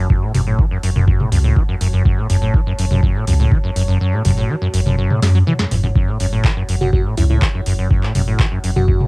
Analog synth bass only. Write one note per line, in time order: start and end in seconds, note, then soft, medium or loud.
0.35 0.55 F#1 loud
0.83 0.94 F#1 medium
0.96 1.16 F#1 medium
1.32 1.52 C#2 medium
1.81 2.01 F#1 loud
2.30 2.50 F#1 loud
2.78 2.89 F#1 medium
2.91 3.11 F#1 medium
3.27 3.47 C#2 medium
3.76 3.96 F#1 loud
4.25 4.45 F#1 loud
4.74 4.84 F#1 medium
4.86 5.06 F#1 medium
5.23 5.43 F#2 medium
5.71 5.91 F#1 loud
6.20 6.40 F#1 loud
6.69 6.79 F#1 medium
6.81 7.01 F#1 medium
7.17 7.38 C#2 medium
7.66 7.86 F#1 loud
8.15 8.35 F#1 loud
8.64 8.74 F#1 medium
8.76 8.96 F#1 medium